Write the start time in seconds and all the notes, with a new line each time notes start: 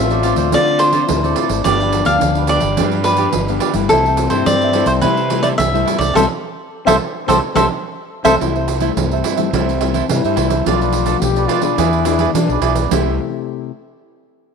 Already playing: A1 A2 A3 C4 F4 E5
0.10 A4 C5 D5, pandeiro
0.23 A3 C4 F4 A4 C5 D5, pandeiro
0.36 D2 A4 C5 D5, pandeiro
0.52 D3 A3 C4 F4 A4 C5 D5, pandeiro
0.67 pandeiro
0.79 F4 A4 C5 D5, pandeiro
0.92 A3 C4 F4 A4 C5 D5, pandeiro
1.08 D2 A2 E4, pandeiro
1.23 A3 C4 A4 C5 D5, pandeiro
1.36 F4 A4 C5 D5, pandeiro
1.49 G#1 A4 C5 D5, pandeiro
1.64 G1 G2 F3 B3 D4 G4 B4 D5, pandeiro
1.68 F5
1.80 G4 B4 F5, pandeiro
1.92 pandeiro
2.05 D2 F3 B3 D4 G4 B4 F5, pandeiro
2.21 D2 D3, pandeiro
2.35 G4 B4 F5, pandeiro
2.47 F3 B3 D4 G4 B4 D5 F5, pandeiro
2.60 G1 G4 B4 F5, pandeiro
2.77 G2 F3 B3 D4 G4 B4 F5, pandeiro
2.91 pandeiro
3.04 F3 B3 D4 G4 B4 F5, pandeiro
3.16 D4 G4 B4 F5, pandeiro
3.33 G1 D3, pandeiro
3.48 F3 B3 D4 G4 B4 F5, pandeiro
3.60 D4 G4 B4 F5, pandeiro
3.74 G1 G3 A3 E4 G4 B4 F5, pandeiro
3.89 C2 C3 C4 E4 A4 C5 E5, pandeiro
4.06 A4 C5 E5, pandeiro
4.17 pandeiro
4.30 G2 G3 A3 E4 A4 C5 E5, pandeiro
4.46 G2 D5, pandeiro
4.61 A4 C5 E5, pandeiro
4.73 G3 A3 E4 A4 C5 E5, pandeiro
4.86 C2 A4 C5 E5, pandeiro
5.01 C3 G3 A3 E4 A4 B4 C5 E5, pandeiro
5.17 pandeiro
5.30 G3 A3 E4 A4 C5 E5, pandeiro
5.43 E4 A4 C5 D5 E5, pandeiro
5.58 C2 G2 E5, pandeiro
5.74 G3 A3 E4 A4 C5 E5, pandeiro
5.85 E4 A4 C5 E5, pandeiro
5.99 C2 G3 A3 E4 A4 C5 D5 E5, pandeiro
6.14 C2 G3 A3 C4 G4 A4 C5 E5, pandeiro
6.85 C2 G3 A3 C4 G4 A4 C5 E5, pandeiro
7.27 C2 G3 A3 C4 G4 A4 C5 E5, pandeiro
7.55 C2 G3 A3 C4 G4 A4 C5 E5, pandeiro
8.24 C2 G3 A3 C4 G4 A4 C5 E5, pandeiro
8.40 C2 C3 G3 A3 E4 A4 C5 E5, pandeiro
8.55 A4 C5 E5, pandeiro
8.68 pandeiro
8.80 G3 A3 E4 A4 C5 E5, pandeiro
8.97 C2 G2 C4, pandeiro
9.11 A4 C5 E5, pandeiro
9.24 E4 A4 C5 E5, pandeiro
9.37 G3 A3 E4 A4 C5 E5, pandeiro
9.53 C2 C3 G3 A3 C4 E4 A4 C5 E5, pandeiro
9.69 pandeiro
9.81 G3 A3 E4 A4 C5 E5, pandeiro
9.94 E4 A4 C5 E5, pandeiro
10.09 G2 C3 G3 A3 E4, pandeiro
10.25 G2 A4 C5 E5, pandeiro
10.36 C2 E4 A4 C5 E5, pandeiro
10.49 A4 C5 E5, pandeiro
10.66 B1 B2 F3 A3 D4 F4 A4 B4 D5, pandeiro
10.81 A4 B4 D5, pandeiro
10.93 pandeiro
11.06 F3 A3 D4 F4 A4 B4 D5, pandeiro
11.22 B1 B2 G4, pandeiro
11.36 A4 B4 D5, pandeiro
11.48 F4 A4 B4 D5, pandeiro
11.62 B3 D4 G#4 A4 B4 D5, pandeiro
11.78 E2 E3 E4 G#4 B4 D5, pandeiro
11.93 pandeiro
12.05 B3 D4 E4 G#4 B4 D5, pandeiro
12.19 E4 G#4 B4 D5, pandeiro
12.34 B2 E3 B3 D4 G#4, pandeiro
12.49 B1 G#4 B4 D5, pandeiro
12.61 B1 E4 G#4 B4 D5, pandeiro
12.75 G#4 B4 D5, pandeiro
12.90 C2 C3 A3 E4 A4 C5 E5, pandeiro
12.94 G4